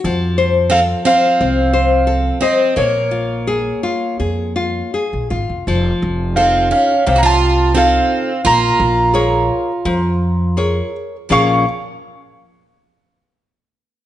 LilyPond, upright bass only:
\new Staff \with { instrumentName = "Upright bass" } { \clef bass \time 4/4 \key bes \minor \tempo 4 = 86 f,2 c,2 | bes,,2 f,4~ f,16 bes,,16 aes,,16 f,,16 | f,,8 f,,4. c,2 | bes,,8 bes,,4. f,2 |
bes,,8 r2. r8 | }